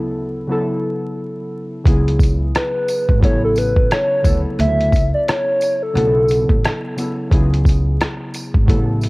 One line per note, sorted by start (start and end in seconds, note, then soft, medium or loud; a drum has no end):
0.00 0.52 D2 medium
0.00 0.47 C#3 medium
0.00 0.48 F#3 medium
0.00 0.49 B3 medium
0.00 0.50 E4 medium
0.00 0.51 A4 medium
0.47 1.73 C#3 medium
0.47 1.74 F#3 medium
0.47 1.74 B3 medium
0.47 1.75 E4 medium
0.52 1.75 A4 medium
1.84 2.50 C#2 loud
1.84 3.09 C#3 medium
1.84 3.10 F#3 medium
1.84 3.10 B3 medium
1.84 3.11 E4 medium
1.84 kick loud
1.84 closed hi-hat medium
1.88 3.12 G#4 medium
2.08 closed hi-hat soft
2.19 kick loud
2.19 closed hi-hat medium
2.19 tambourine soft
2.55 3.19 B4 medium
2.55 cross-stick loud
2.55 closed hi-hat medium
2.88 closed hi-hat medium
2.88 tambourine medium
3.09 3.21 G#1 medium
3.09 kick medium
3.20 3.87 A1 loud
3.20 4.14 C#3 medium
3.20 4.15 F#3 medium
3.20 4.16 B3 medium
3.20 4.16 E4 medium
3.20 kick medium
3.20 closed hi-hat medium
3.24 4.17 A4 medium
3.24 3.42 C#5 loud
3.44 3.59 A4 medium
3.56 3.91 B4 medium
3.56 closed hi-hat medium
3.56 tambourine medium
3.76 kick loud
3.91 4.42 C#5 loud
3.91 cross-stick loud
3.91 closed hi-hat medium
4.22 4.43 D2 medium
4.22 5.48 C#3 medium
4.22 5.49 F#3 medium
4.22 5.49 B3 medium
4.22 5.50 E4 medium
4.22 kick loud
4.22 closed hi-hat medium
4.22 tambourine medium
4.27 5.50 A4 medium
4.59 4.90 D2 loud
4.59 5.10 E5 loud
4.59 closed hi-hat medium
4.81 closed hi-hat soft
4.92 5.11 C#2 medium
4.92 kick medium
4.92 closed hi-hat medium
4.92 tambourine soft
5.14 5.26 D5 loud
5.28 5.84 C#5 loud
5.28 cross-stick loud
5.28 closed hi-hat medium
5.61 closed hi-hat medium
5.61 tambourine medium
5.82 6.98 A4 loud
5.93 6.45 B1 loud
5.93 6.88 C#3 medium
5.93 6.88 F#3 medium
5.93 6.89 B3 medium
5.93 6.89 E4 medium
5.93 closed hi-hat medium
5.98 6.90 A4 medium
6.28 closed hi-hat medium
6.28 tambourine medium
6.49 6.62 A1 medium
6.49 kick loud
6.64 cross-stick loud
6.64 closed hi-hat medium
6.96 7.28 C#3 medium
6.96 7.28 F#3 soft
6.96 7.29 B3 medium
6.96 7.29 E4 medium
6.96 closed hi-hat medium
6.96 tambourine medium
7.00 7.30 A4 medium
7.29 7.95 C#2 loud
7.29 8.55 C#3 medium
7.29 8.56 F#3 medium
7.29 8.56 B3 medium
7.29 8.57 E4 medium
7.29 kick loud
7.29 closed hi-hat medium
7.34 8.57 G#4 medium
7.54 closed hi-hat soft
7.65 kick loud
7.65 closed hi-hat medium
7.65 tambourine soft
8.01 cross-stick loud
8.01 closed hi-hat medium
8.34 closed hi-hat medium
8.34 tambourine medium
8.54 8.67 G#1 medium
8.54 kick medium
8.65 9.09 A1 loud
8.65 8.74 C3 medium
8.65 9.09 F#3 medium
8.65 9.09 B3 medium
8.65 9.09 E4 medium
8.65 kick medium
8.69 9.09 C#3 medium
8.69 9.09 A4 medium
8.69 closed hi-hat medium
9.01 closed hi-hat medium
9.01 tambourine soft